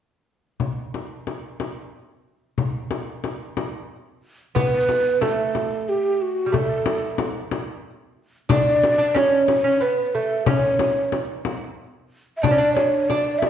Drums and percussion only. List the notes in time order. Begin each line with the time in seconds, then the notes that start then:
0.60 frame drum
0.94 frame drum
1.27 frame drum
1.60 frame drum
2.58 frame drum
2.91 frame drum
3.24 frame drum
3.57 frame drum
4.56 frame drum
4.89 frame drum
5.22 frame drum
5.55 frame drum
6.54 frame drum
6.86 frame drum
7.18 frame drum
7.51 frame drum
8.50 frame drum
8.84 frame drum
9.16 frame drum
9.48 frame drum
10.46 frame drum
10.79 frame drum
11.12 frame drum
11.45 frame drum
12.44 frame drum
12.77 frame drum
13.10 frame drum
13.42 frame drum